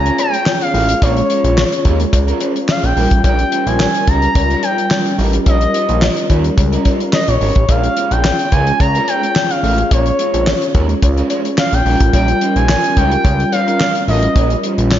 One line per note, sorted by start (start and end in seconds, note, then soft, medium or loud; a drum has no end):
0.00 0.11 C#2 medium
0.00 2.92 C#4 medium
0.00 2.93 F4 medium
0.00 2.93 G#4 medium
0.00 2.93 C#5 medium
0.00 0.19 A#5 loud
0.05 0.17 G#3 medium
0.05 0.18 C#4 medium
0.05 0.18 F4 medium
0.05 0.19 A#4 medium
0.05 closed hi-hat medium
0.18 0.34 G#3 medium
0.18 0.33 C#4 medium
0.18 0.33 F4 medium
0.18 0.33 C5 medium
0.18 0.59 G5 loud
0.18 closed hi-hat medium
0.18 cowbell medium
0.33 muted clean electric guitar stroke soft
0.33 closed hi-hat soft
0.46 snare loud
0.46 clap medium
0.46 cowbell medium
0.61 1.04 F5 loud
0.61 muted clean electric guitar stroke soft
0.61 closed hi-hat medium
0.74 0.94 A1 medium
0.74 0.94 G#3 medium
0.74 0.89 C#4 medium
0.74 0.88 F4 medium
0.74 0.88 A#4 loud
0.74 open hi-hat medium
0.89 muted clean electric guitar stroke medium
0.89 closed hi-hat medium
1.02 1.22 A#1 loud
1.02 1.22 G#3 medium
1.02 1.17 C#4 medium
1.02 1.16 F4 medium
1.02 1.15 A#4 medium
1.02 2.13 C#5 medium
1.02 kick loud
1.02 closed hi-hat medium
1.02 cowbell medium
1.17 muted clean electric guitar stroke soft
1.17 closed hi-hat soft
1.30 1.44 G#3 medium
1.30 1.44 C#4 medium
1.30 1.44 F4 medium
1.30 1.43 C5 medium
1.30 closed hi-hat medium
1.44 1.64 A#1 medium
1.44 1.59 G#3 medium
1.44 1.59 C#4 medium
1.44 1.59 F4 medium
1.44 1.59 C5 medium
1.44 closed hi-hat soft
1.58 snare loud
1.58 clap medium
1.58 cowbell medium
1.72 muted clean electric guitar stroke soft
1.72 closed hi-hat medium
1.85 2.05 D#2 medium
1.85 2.05 G#3 medium
1.85 2.00 C#4 medium
1.85 1.99 F4 medium
1.85 1.99 A#4 loud
1.85 kick medium
1.85 closed hi-hat medium
2.00 muted clean electric guitar stroke soft
2.00 closed hi-hat medium
2.13 2.33 C#2 medium
2.13 muted clean electric guitar stroke soft
2.13 kick loud
2.13 closed hi-hat loud
2.13 cowbell medium
2.27 2.39 G#3 medium
2.27 2.40 C#4 medium
2.27 2.41 F4 medium
2.27 2.42 A#4 medium
2.27 closed hi-hat soft
2.40 2.57 G#3 medium
2.40 2.56 C#4 medium
2.40 2.55 F4 medium
2.40 2.55 C5 medium
2.40 closed hi-hat medium
2.40 cowbell medium
2.56 muted clean electric guitar stroke soft
2.56 closed hi-hat soft
2.69 2.83 F5 medium
2.69 snare loud
2.69 clap medium
2.69 cowbell medium
2.83 2.93 A#1 medium
2.83 3.22 G5 medium
2.83 muted clean electric guitar stroke soft
2.83 closed hi-hat soft
2.96 3.07 A#1 medium
2.96 3.16 G3 medium
2.96 7.37 G3 medium
2.96 7.37 C#4 medium
2.96 3.11 C#4 medium
2.96 3.11 D#4 medium
2.96 7.37 F4 medium
2.96 7.37 A#4 medium
2.96 3.10 A#4 loud
2.96 open hi-hat medium
3.11 3.21 A1 medium
3.11 muted clean electric guitar stroke soft
3.11 kick medium
3.11 closed hi-hat medium
3.24 3.44 A#1 loud
3.24 3.44 G3 medium
3.24 3.39 C#4 medium
3.24 3.38 D#4 medium
3.24 3.38 A#4 medium
3.24 3.69 G5 loud
3.24 kick loud
3.24 closed hi-hat medium
3.24 cowbell medium
3.39 muted clean electric guitar stroke soft
3.39 closed hi-hat soft
3.52 3.67 G3 medium
3.52 3.67 C#4 medium
3.52 3.66 D#4 medium
3.52 3.66 C5 medium
3.52 closed hi-hat medium
3.66 3.87 A#1 medium
3.66 3.82 G3 soft
3.66 3.82 C#4 medium
3.66 3.81 D#4 medium
3.66 3.81 C5 medium
3.66 4.10 G#5 loud
3.66 closed hi-hat medium
3.80 snare loud
3.80 clap medium
3.80 cowbell medium
3.94 muted clean electric guitar stroke soft
3.94 closed hi-hat medium
4.07 4.28 C#2 loud
4.07 4.27 G3 medium
4.07 4.22 C#4 medium
4.07 4.21 D#4 medium
4.07 4.21 A#4 medium
4.07 4.65 A#5 loud
4.07 kick medium
4.07 closed hi-hat medium
4.22 muted clean electric guitar stroke medium
4.22 closed hi-hat soft
4.35 4.55 C#2 medium
4.35 muted clean electric guitar stroke soft
4.35 kick loud
4.35 closed hi-hat medium
4.35 cowbell medium
4.50 4.62 G3 medium
4.50 4.62 C#4 medium
4.50 4.63 D#4 medium
4.50 4.64 A#4 medium
4.50 closed hi-hat soft
4.63 4.79 G3 medium
4.63 4.77 C#4 medium
4.63 4.77 D#4 medium
4.63 4.77 C5 medium
4.63 5.19 G5 loud
4.63 closed hi-hat medium
4.63 cowbell medium
4.78 muted clean electric guitar stroke medium
4.78 closed hi-hat soft
4.91 snare loud
4.91 clap medium
4.91 cowbell medium
5.05 muted clean electric guitar stroke medium
5.05 closed hi-hat medium
5.18 5.39 A1 loud
5.18 5.38 G3 medium
5.18 5.33 C#4 medium
5.18 5.32 D#4 medium
5.18 5.32 A#4 loud
5.18 open hi-hat medium
5.33 muted clean electric guitar stroke soft
5.33 closed hi-hat medium
5.46 5.67 A#1 loud
5.46 5.66 G3 medium
5.46 5.61 C#4 medium
5.46 5.60 D#4 medium
5.46 5.59 A#4 medium
5.46 6.26 D#5 loud
5.46 kick loud
5.46 closed hi-hat medium
5.46 cowbell medium
5.61 muted clean electric guitar stroke medium
5.61 closed hi-hat medium
5.74 5.89 G3 medium
5.74 5.88 C#4 medium
5.74 5.88 D#4 medium
5.74 5.87 C5 medium
5.74 closed hi-hat medium
5.89 6.09 A#1 loud
5.89 6.04 G3 medium
5.89 6.04 C#4 medium
5.89 6.03 D#4 medium
5.89 6.03 C5 medium
5.89 closed hi-hat medium
6.02 snare loud
6.02 clap medium
6.02 cowbell medium
6.17 muted clean electric guitar stroke soft
6.17 closed hi-hat medium
6.29 6.50 D#2 medium
6.29 6.49 G3 medium
6.29 6.44 C#4 medium
6.29 6.44 D#4 medium
6.29 6.43 A#4 loud
6.29 kick medium
6.29 closed hi-hat medium
6.29 cowbell medium
6.44 muted clean electric guitar stroke soft
6.44 closed hi-hat soft
6.57 6.78 C#2 medium
6.57 muted clean electric guitar stroke soft
6.57 kick loud
6.57 closed hi-hat medium
6.57 cowbell medium
6.72 6.84 G3 medium
6.72 6.84 C#4 medium
6.72 6.85 D#4 medium
6.72 6.86 A#4 medium
6.72 closed hi-hat medium
6.85 7.01 G3 medium
6.85 7.00 C#4 medium
6.85 6.99 D#4 medium
6.85 7.00 C5 medium
6.85 kick medium
6.85 closed hi-hat medium
6.85 cowbell medium
7.00 muted clean electric guitar stroke soft
7.00 closed hi-hat medium
7.13 7.30 D#5 medium
7.13 snare loud
7.13 clap medium
7.13 cowbell medium
7.28 7.38 A#1 medium
7.28 7.70 C#5 medium
7.28 muted clean electric guitar stroke soft
7.28 closed hi-hat medium
7.41 7.52 G#1 medium
7.41 7.61 G3 medium
7.41 7.56 C#4 medium
7.41 7.55 D#4 medium
7.41 7.55 A#4 medium
7.41 open hi-hat medium
7.55 7.65 A1 medium
7.55 muted clean electric guitar stroke soft
7.55 kick medium
7.55 closed hi-hat medium
7.68 7.89 A#1 loud
7.68 7.88 G#3 medium
7.68 11.81 C#4 medium
7.68 7.83 C#4 medium
7.68 11.81 F4 medium
7.68 7.83 F4 medium
7.68 11.82 G#4 medium
7.68 7.82 A#4 medium
7.68 11.82 C#5 medium
7.68 8.13 F5 loud
7.68 kick loud
7.68 closed hi-hat medium
7.68 cowbell medium
7.83 muted clean electric guitar stroke soft
7.83 closed hi-hat soft
7.96 8.11 G#3 medium
7.96 8.11 C#4 medium
7.96 8.10 F4 medium
7.96 8.10 C5 medium
7.96 closed hi-hat medium
8.11 8.31 A#1 loud
8.11 8.26 G#3 medium
8.11 8.26 C#4 medium
8.11 8.26 F4 medium
8.11 8.25 C5 medium
8.11 8.54 G5 loud
8.11 closed hi-hat soft
8.25 snare loud
8.25 clap medium
8.25 cowbell medium
8.39 muted clean electric guitar stroke soft
8.39 closed hi-hat medium
8.52 8.72 C#2 loud
8.52 8.72 G#3 medium
8.52 8.67 C#4 medium
8.52 8.66 F4 medium
8.52 8.66 A#4 loud
8.52 8.80 G#5 loud
8.52 kick medium
8.52 closed hi-hat medium
8.67 muted clean electric guitar stroke soft
8.67 closed hi-hat soft
8.80 9.00 C#2 medium
8.80 9.10 A#5 loud
8.80 muted clean electric guitar stroke soft
8.80 kick loud
8.80 closed hi-hat medium
8.80 cowbell medium
8.94 9.06 G#3 medium
8.94 9.07 C#4 medium
8.94 9.07 F4 medium
8.94 9.09 A#4 medium
8.94 closed hi-hat soft
9.07 9.23 G#3 medium
9.07 9.22 C#4 medium
9.07 9.22 F4 medium
9.07 9.22 C5 medium
9.07 9.52 G5 loud
9.07 closed hi-hat medium
9.07 cowbell medium
9.22 muted clean electric guitar stroke soft
9.22 closed hi-hat soft
9.36 snare loud
9.36 clap medium
9.36 cowbell medium
9.50 9.91 F5 loud
9.50 muted clean electric guitar stroke soft
9.50 closed hi-hat medium
9.63 9.83 A1 medium
9.63 9.83 G#3 medium
9.63 9.78 C#4 medium
9.63 9.77 F4 loud
9.63 9.77 A#4 medium
9.63 open hi-hat medium
9.78 muted clean electric guitar stroke soft
9.78 closed hi-hat medium
9.91 10.11 A#1 loud
9.91 10.11 G#3 medium
9.91 10.06 C#4 medium
9.91 10.05 F4 medium
9.91 10.05 A#4 medium
9.91 10.98 C#5 medium
9.91 kick loud
9.91 closed hi-hat medium
9.91 cowbell medium
10.06 muted clean electric guitar stroke soft
10.06 closed hi-hat soft
10.19 10.34 G#3 medium
10.19 10.33 C#4 medium
10.19 10.33 F4 medium
10.19 10.32 C5 medium
10.19 closed hi-hat medium
10.34 10.54 A#1 medium
10.34 10.48 G#3 soft
10.34 10.48 C#4 soft
10.34 10.48 F4 medium
10.34 10.48 C5 medium
10.34 closed hi-hat medium
10.47 snare loud
10.47 clap medium
10.47 cowbell medium
10.61 muted clean electric guitar stroke soft
10.61 closed hi-hat medium
10.74 10.95 D#2 medium
10.74 10.94 G#3 medium
10.74 10.89 C#4 medium
10.74 10.89 F4 medium
10.74 10.88 A#4 medium
10.74 kick medium
10.74 closed hi-hat medium
10.89 muted clean electric guitar stroke soft
10.89 closed hi-hat soft
11.02 11.22 C#2 loud
11.02 muted clean electric guitar stroke soft
11.02 kick loud
11.02 closed hi-hat loud
11.02 cowbell medium
11.17 11.28 G#3 medium
11.17 11.29 C#4 medium
11.17 11.30 F4 medium
11.17 11.31 A#4 medium
11.17 closed hi-hat soft
11.30 11.46 G#3 medium
11.30 11.44 C#4 medium
11.30 11.44 F4 medium
11.30 11.44 C5 medium
11.30 closed hi-hat medium
11.30 cowbell medium
11.45 muted clean electric guitar stroke medium
11.45 closed hi-hat medium
11.58 11.75 F5 medium
11.58 snare loud
11.58 clap medium
11.58 cowbell medium
11.72 11.82 A#1 medium
11.72 12.13 G5 loud
11.72 muted clean electric guitar stroke soft
11.72 closed hi-hat medium
11.85 11.96 A#1 medium
11.85 12.05 G3 medium
11.85 14.99 G3 medium
11.85 14.99 C#4 medium
11.85 12.00 C#4 medium
11.85 12.00 D#4 medium
11.85 14.99 F4 medium
11.85 14.99 A#4 medium
11.85 11.99 A#4 loud
11.85 open hi-hat medium
12.00 12.10 A1 medium
12.00 muted clean electric guitar stroke soft
12.00 kick medium
12.00 closed hi-hat medium
12.13 12.34 A#1 loud
12.13 12.33 G3 medium
12.13 12.28 C#4 medium
12.13 12.28 D#4 medium
12.13 12.27 A#4 medium
12.13 12.58 G5 loud
12.13 kick loud
12.13 closed hi-hat medium
12.13 cowbell medium
12.28 muted clean electric guitar stroke soft
12.28 closed hi-hat soft
12.41 12.56 G3 medium
12.41 12.56 C#4 medium
12.41 12.55 D#4 medium
12.41 12.55 C5 medium
12.41 closed hi-hat medium
12.56 12.76 A#1 medium
12.56 12.71 G3 soft
12.56 12.71 C#4 medium
12.56 12.70 D#4 medium
12.56 12.70 C5 medium
12.56 12.99 G#5 loud
12.56 closed hi-hat soft
12.69 snare loud
12.69 clap medium
12.69 cowbell medium
12.84 muted clean electric guitar stroke soft
12.84 closed hi-hat medium
12.97 13.17 C#2 medium
12.97 13.16 G3 medium
12.97 13.11 C#4 medium
12.97 13.11 D#4 medium
12.97 13.10 A#4 medium
12.97 13.52 G5 loud
12.97 kick medium
12.97 closed hi-hat medium
13.11 muted clean electric guitar stroke soft
13.11 closed hi-hat soft
13.24 13.45 C#2 loud
13.24 muted clean electric guitar stroke soft
13.24 kick loud
13.24 closed hi-hat medium
13.24 cowbell medium
13.39 muted clean electric guitar stroke soft
13.39 closed hi-hat soft
13.52 13.67 G3 medium
13.52 13.67 C#4 medium
13.52 13.66 D#4 medium
13.52 13.67 C5 loud
13.52 14.04 F5 loud
13.52 closed hi-hat medium
13.52 cowbell medium
13.67 13.82 G3 medium
13.67 13.82 C#4 medium
13.67 13.81 D#4 medium
13.67 13.81 A#4 medium
13.67 closed hi-hat soft
13.81 snare loud
13.81 clap medium
13.81 cowbell medium
13.95 muted clean electric guitar stroke soft
13.95 closed hi-hat medium
14.08 14.28 A1 loud
14.08 14.27 G3 medium
14.08 14.23 C#4 medium
14.08 14.22 D#4 medium
14.08 14.21 A#4 medium
14.08 14.60 D#5 medium
14.08 open hi-hat medium
14.23 muted clean electric guitar stroke medium
14.23 closed hi-hat medium
14.35 14.56 A#1 medium
14.35 14.55 G3 medium
14.35 14.50 C#4 medium
14.35 14.50 D#4 medium
14.35 14.49 A#4 loud
14.35 kick loud
14.35 closed hi-hat medium
14.35 cowbell medium
14.50 muted clean electric guitar stroke medium
14.50 closed hi-hat soft
14.63 14.78 G3 medium
14.63 14.78 C#4 medium
14.63 14.78 D#4 medium
14.63 14.77 C5 medium
14.63 closed hi-hat medium
14.78 14.98 A#1 medium
14.78 14.93 G3 soft
14.78 14.93 C#4 medium
14.78 14.93 D#4 medium
14.78 14.92 C5 medium
14.78 closed hi-hat medium
14.91 snare medium
14.91 clap medium
14.91 cowbell medium